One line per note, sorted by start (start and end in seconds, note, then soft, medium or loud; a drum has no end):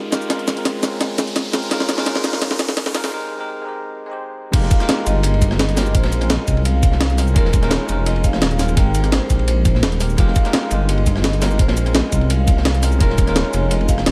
0.00 0.10 F4 medium
0.00 0.11 G4 medium
0.00 0.12 A#4 medium
0.00 riser medium
0.11 0.27 G#3 medium
0.11 0.27 D#4 medium
0.11 0.28 F4 medium
0.11 0.28 G4 medium
0.11 0.29 A#4 medium
0.11 snare medium
0.11 closed hi-hat medium
0.11 cabasa medium
0.22 cabasa soft
0.28 0.54 G#3 medium
0.28 0.54 C4 medium
0.28 0.55 C#4 medium
0.28 0.55 F4 medium
0.28 0.55 A#4 medium
0.28 snare medium
0.28 closed hi-hat medium
0.39 closed hi-hat soft
0.48 snare medium
0.48 closed hi-hat medium
0.48 cabasa medium
0.55 0.78 G#3 medium
0.55 0.80 C4 medium
0.55 0.81 C#4 medium
0.55 0.81 F4 medium
0.55 0.82 A#4 medium
0.55 closed hi-hat soft
0.65 snare medium
0.65 closed hi-hat medium
0.79 1.50 G#3 medium
0.79 1.51 C4 medium
0.79 1.51 C#4 medium
0.79 snare medium
0.79 closed hi-hat medium
0.79 cabasa medium
0.84 1.52 F4 medium
0.84 1.53 A#4 medium
1.01 snare medium
1.01 closed hi-hat medium
1.18 snare medium
1.18 closed hi-hat medium
1.18 cabasa medium
1.27 closed hi-hat soft
1.36 snare medium
1.36 closed hi-hat medium
1.52 1.68 G#3 medium
1.52 1.69 C4 medium
1.52 1.69 C#4 medium
1.52 1.69 F4 medium
1.52 1.70 A#4 medium
1.52 snare medium
1.52 closed hi-hat medium
1.52 cabasa medium
1.63 cabasa soft
1.69 1.95 G#3 medium
1.69 1.95 C#4 medium
1.69 1.96 D#4 medium
1.69 1.96 F4 medium
1.69 1.96 A#4 loud
1.69 snare medium
1.69 closed hi-hat medium
1.80 snare medium
1.80 closed hi-hat soft
1.89 snare medium
1.89 closed hi-hat medium
1.89 cabasa medium
1.96 2.19 G#3 medium
1.96 2.21 C#4 medium
1.96 2.22 D#4 medium
1.96 2.22 F4 medium
1.96 2.23 A#4 loud
1.96 snare medium
1.96 closed hi-hat soft
2.06 snare medium
2.06 closed hi-hat medium
2.15 snare medium
2.21 2.91 G#3 medium
2.21 2.92 C#4 medium
2.21 2.93 D#4 medium
2.21 snare medium
2.21 closed hi-hat medium
2.21 cabasa medium
2.26 2.93 F4 medium
2.26 2.94 A#4 loud
2.33 snare medium
2.42 snare medium
2.42 closed hi-hat medium
2.51 snare medium
2.59 snare loud
2.59 closed hi-hat medium
2.59 cabasa medium
2.69 snare medium
2.69 closed hi-hat soft
2.77 snare loud
2.77 closed hi-hat loud
2.86 snare medium
2.93 3.09 G#3 medium
2.93 3.10 C#4 medium
2.93 3.10 D#4 medium
2.93 3.11 F4 medium
2.93 3.11 A#4 medium
2.93 snare loud
2.93 closed hi-hat medium
2.93 cabasa medium
3.04 snare medium
3.04 cabasa soft
3.10 3.36 G#3 medium
3.10 3.36 C4 medium
3.10 3.37 D#4 medium
3.10 3.37 G4 medium
3.10 3.38 A#4 medium
3.37 3.61 G#3 medium
3.37 3.62 C4 medium
3.37 3.63 D#4 medium
3.37 3.64 G4 medium
3.37 3.64 A#4 medium
3.62 4.05 G#3 medium
3.62 4.07 C4 medium
3.62 4.08 D#4 medium
3.67 4.09 G4 medium
3.67 4.10 A#4 medium
4.06 4.50 G#3 medium
4.06 4.51 C4 medium
4.06 4.51 D#4 medium
4.11 4.52 G4 medium
4.11 4.53 C5 medium
4.52 4.69 F1 loud
4.52 4.77 G#3 medium
4.52 4.78 D#4 medium
4.52 4.78 F4 medium
4.52 4.79 G4 medium
4.52 4.79 A#4 loud
4.52 5.08 F5 loud
4.52 kick loud
4.52 closed hi-hat medium
4.52 crash loud
4.52 ride medium
4.63 snare medium
4.71 kick loud
4.71 closed hi-hat medium
4.71 ride medium
4.71 cabasa medium
4.79 5.02 G#3 medium
4.79 5.03 D#4 medium
4.79 5.04 F4 medium
4.79 5.05 G4 medium
4.79 5.05 A#4 loud
4.79 cross-stick soft
4.79 snare soft
4.79 closed hi-hat soft
4.89 snare loud
4.89 closed hi-hat medium
4.89 ride medium
4.98 ride soft
5.03 5.96 G1 medium
5.03 5.73 G#3 medium
5.03 5.74 D#4 medium
5.03 5.75 F4 medium
5.03 5.59 D#5 loud
5.03 closed hi-hat medium
5.03 ride medium
5.03 cabasa medium
5.08 5.76 G4 medium
5.08 5.77 A#4 medium
5.23 closed hi-hat medium
5.23 ride medium
5.34 ride soft
5.42 kick medium
5.42 closed hi-hat medium
5.42 ride medium
5.42 cabasa medium
5.51 cross-stick soft
5.51 snare medium
5.59 5.92 D#5 loud
5.59 snare loud
5.59 closed hi-hat loud
5.59 ride medium
5.69 closed hi-hat soft
5.75 5.92 G#3 medium
5.75 5.92 D#4 medium
5.75 5.93 F4 medium
5.75 5.93 G4 medium
5.75 5.93 A#4 medium
5.75 cross-stick soft
5.75 snare soft
5.75 snare loud
5.75 open hi-hat medium
5.75 ride medium
5.75 cabasa medium
5.86 cabasa soft
5.93 6.38 A#1 medium
5.93 6.18 G#3 medium
5.93 6.19 C4 medium
5.93 6.19 C#4 medium
5.93 6.20 F4 medium
5.93 6.20 A#4 medium
5.93 6.31 C5 loud
5.93 kick loud
5.93 closed hi-hat medium
5.93 ride medium
6.03 snare loud
6.03 ride medium
6.12 closed hi-hat medium
6.12 cabasa medium
6.20 6.43 G#3 medium
6.20 6.45 C4 medium
6.20 6.46 C#4 medium
6.20 6.46 F4 medium
6.20 6.46 A#4 medium
6.20 cross-stick soft
6.20 closed hi-hat soft
6.20 ride medium
6.30 6.66 D#5 loud
6.30 snare loud
6.30 closed hi-hat loud
6.30 ride medium
6.44 7.34 C2 medium
6.44 7.14 G#3 medium
6.44 7.15 C4 medium
6.44 7.16 C#4 medium
6.44 kick medium
6.44 closed hi-hat medium
6.44 ride medium
6.44 cabasa medium
6.49 7.17 F4 medium
6.49 7.18 A#4 medium
6.57 ride soft
6.65 7.15 F5 loud
6.65 closed hi-hat loud
6.65 ride medium
6.83 kick loud
6.83 closed hi-hat medium
6.83 ride medium
6.83 cabasa medium
6.92 snare medium
7.00 snare loud
7.00 closed hi-hat loud
7.00 ride medium
7.10 closed hi-hat soft
7.16 7.33 G#3 medium
7.16 7.33 C4 medium
7.16 7.34 C#4 medium
7.16 7.34 F4 medium
7.16 7.35 A#4 medium
7.16 cross-stick soft
7.16 open hi-hat medium
7.16 ride medium
7.16 cabasa medium
7.27 cabasa soft
7.34 7.79 D#1 medium
7.34 7.60 G#3 loud
7.34 7.60 C#4 medium
7.34 7.60 D#4 medium
7.34 7.61 F4 medium
7.34 7.72 A#4 loud
7.34 7.61 A#4 loud
7.34 kick loud
7.34 closed hi-hat medium
7.34 ride medium
7.45 snare medium
7.53 kick loud
7.53 closed hi-hat medium
7.53 ride medium
7.53 cabasa medium
7.61 7.84 G#3 loud
7.61 7.86 C#4 medium
7.61 7.87 D#4 medium
7.61 7.87 F4 medium
7.61 7.88 A#4 loud
7.61 cross-stick soft
7.61 snare soft
7.61 closed hi-hat soft
7.71 8.08 C#5 loud
7.71 snare loud
7.71 closed hi-hat medium
7.71 ride medium
7.80 ride soft
7.85 8.40 F1 loud
7.85 8.56 G#3 medium
7.85 8.56 C#4 medium
7.85 8.57 D#4 medium
7.85 closed hi-hat medium
7.85 ride medium
7.85 cabasa medium
7.90 8.58 F4 medium
7.90 8.59 A#4 medium
8.06 8.25 D#5 loud
8.06 closed hi-hat medium
8.06 ride medium
8.16 ride soft
8.24 8.79 F5 loud
8.24 kick medium
8.24 closed hi-hat medium
8.24 ride medium
8.24 cabasa medium
8.33 cross-stick soft
8.33 snare medium
8.42 8.79 D#1 loud
8.42 snare loud
8.42 closed hi-hat medium
8.42 ride medium
8.51 closed hi-hat soft
8.58 8.74 G#3 medium
8.58 8.75 C#4 medium
8.58 8.75 D#4 medium
8.58 8.75 F4 medium
8.58 8.76 A#4 loud
8.58 cross-stick soft
8.58 snare soft
8.58 open hi-hat medium
8.58 ride medium
8.58 cabasa medium
8.69 ride soft
8.69 cabasa soft
8.75 9.20 G#1 medium
8.75 9.01 G#3 medium
8.75 9.01 C4 medium
8.75 9.02 D#4 medium
8.75 9.02 G4 medium
8.75 9.02 A#4 medium
8.75 9.14 G5 loud
8.75 kick loud
8.75 closed hi-hat medium
8.75 ride loud
8.95 closed hi-hat medium
8.95 ride medium
8.95 cabasa medium
9.02 9.25 G#3 medium
9.02 9.27 C4 medium
9.02 9.28 D#4 medium
9.02 9.28 G4 medium
9.02 9.29 A#4 medium
9.02 cross-stick soft
9.02 closed hi-hat soft
9.12 9.47 C5 loud
9.12 snare loud
9.12 closed hi-hat medium
9.12 ride medium
9.27 9.84 A#1 medium
9.27 9.97 G#3 medium
9.27 9.98 C4 medium
9.27 9.99 D#4 medium
9.27 kick medium
9.27 closed hi-hat medium
9.27 ride medium
9.27 cabasa medium
9.32 9.99 G4 medium
9.32 10.00 A#4 medium
9.39 ride soft
9.48 9.97 C5 loud
9.48 closed hi-hat medium
9.48 ride medium
9.65 kick loud
9.65 closed hi-hat medium
9.65 ride medium
9.65 cabasa medium
9.75 snare medium
9.83 10.17 D#1 medium
9.83 snare loud
9.83 closed hi-hat medium
9.83 ride medium
9.92 closed hi-hat soft
9.99 10.15 G#3 medium
9.99 10.16 C4 medium
9.99 10.16 D#4 medium
9.99 10.17 G4 medium
9.99 10.17 A#4 medium
9.99 cross-stick soft
9.99 open hi-hat medium
9.99 ride medium
9.99 cabasa medium
10.10 cabasa soft
10.16 10.34 F1 loud
10.16 10.42 G#3 medium
10.16 10.42 D#4 medium
10.16 10.43 F4 medium
10.16 10.43 G4 medium
10.16 10.44 A#4 loud
10.16 10.63 F5 loud
10.16 kick loud
10.16 closed hi-hat medium
10.16 ride medium
10.28 snare soft
10.36 kick loud
10.36 closed hi-hat medium
10.36 ride medium
10.36 cabasa medium
10.43 10.67 G#3 medium
10.43 10.68 D#4 medium
10.43 10.69 F4 medium
10.43 10.70 G4 medium
10.43 10.70 A#4 loud
10.43 cross-stick soft
10.43 snare soft
10.43 closed hi-hat soft
10.53 snare loud
10.53 closed hi-hat medium
10.53 ride medium
10.63 10.71 F5 medium
10.63 ride soft
10.68 11.61 G1 medium
10.68 11.38 G#3 medium
10.68 11.39 D#4 medium
10.68 11.40 F4 medium
10.68 11.23 D#5 loud
10.68 closed hi-hat medium
10.68 ride medium
10.68 cabasa medium
10.73 11.41 G4 medium
10.73 11.41 A#4 medium
10.89 closed hi-hat medium
10.89 ride loud
10.98 ride soft
11.06 kick medium
11.06 closed hi-hat medium
11.06 ride medium
11.06 cabasa medium
11.16 cross-stick soft
11.16 snare medium
11.24 11.61 D#5 loud
11.24 snare loud
11.24 closed hi-hat medium
11.24 ride medium
11.33 closed hi-hat soft
11.40 11.56 G#3 medium
11.40 11.57 D#4 medium
11.40 11.57 F4 medium
11.40 11.58 G4 medium
11.40 11.58 A#4 loud
11.40 cross-stick soft
11.40 snare soft
11.40 snare loud
11.40 open hi-hat medium
11.40 ride medium
11.40 cabasa medium
11.51 cabasa soft
11.58 12.02 A#1 medium
11.58 11.83 G#3 medium
11.58 11.84 C4 medium
11.58 11.84 C#4 medium
11.58 11.84 F4 medium
11.58 11.85 A#4 medium
11.58 11.96 C5 loud
11.58 kick loud
11.58 closed hi-hat medium
11.58 ride medium
11.68 snare loud
11.68 ride medium
11.77 closed hi-hat medium
11.77 cabasa medium
11.84 12.08 G#3 medium
11.84 12.09 C4 medium
11.84 12.10 C#4 medium
11.84 12.11 F4 medium
11.84 12.11 A#4 medium
11.84 cross-stick soft
11.84 closed hi-hat soft
11.84 ride medium
11.95 12.31 D#5 loud
11.95 snare loud
11.95 closed hi-hat medium
11.95 ride medium
12.09 13.02 C2 medium
12.09 12.79 G#3 medium
12.09 12.80 C4 medium
12.09 12.81 C#4 medium
12.09 kick medium
12.09 closed hi-hat medium
12.09 ride medium
12.09 cabasa medium
12.14 12.82 F4 medium
12.14 12.83 A#4 medium
12.21 ride soft
12.30 12.79 F5 loud
12.30 closed hi-hat loud
12.30 ride medium
12.48 kick loud
12.48 closed hi-hat medium
12.48 ride medium
12.48 cabasa medium
12.57 snare medium
12.65 snare loud
12.65 closed hi-hat medium
12.65 ride medium
12.74 closed hi-hat soft
12.81 12.98 G#3 medium
12.81 12.98 C4 medium
12.81 12.98 C#4 medium
12.81 12.99 F4 medium
12.81 12.99 A#4 medium
12.81 cross-stick soft
12.81 open hi-hat medium
12.81 ride medium
12.81 cabasa medium
12.92 cabasa soft
12.99 13.44 D#1 medium
12.99 13.24 G#3 medium
12.99 13.25 C#4 medium
12.99 13.25 D#4 medium
12.99 13.26 F4 medium
12.99 13.37 A#4 loud
12.99 13.26 A#4 loud
12.99 kick loud
12.99 closed hi-hat loud
12.99 ride loud
13.10 snare medium
13.18 kick loud
13.18 closed hi-hat medium
13.18 ride medium
13.18 cabasa medium
13.26 13.49 G#3 medium
13.26 13.51 C#4 medium
13.26 13.51 D#4 medium
13.26 13.52 F4 medium
13.26 13.52 A#4 loud
13.26 cross-stick soft
13.26 snare soft
13.26 closed hi-hat soft
13.36 13.72 C#5 loud
13.36 snare loud
13.36 closed hi-hat loud
13.36 ride medium
13.44 ride soft
13.50 14.05 F1 medium
13.50 14.11 G#3 medium
13.50 14.11 C#4 medium
13.50 14.11 D#4 medium
13.50 closed hi-hat medium
13.50 ride medium
13.50 cabasa medium
13.55 14.11 F4 medium
13.55 14.11 A#4 medium
13.71 13.89 D#5 loud
13.71 closed hi-hat medium
13.71 ride medium
13.81 ride soft
13.89 14.11 F5 loud
13.89 kick medium
13.89 closed hi-hat medium
13.89 ride medium
13.89 cabasa medium
13.98 cross-stick soft
13.98 snare medium
14.06 14.11 D#1 loud
14.06 snare loud
14.06 closed hi-hat loud
14.06 ride medium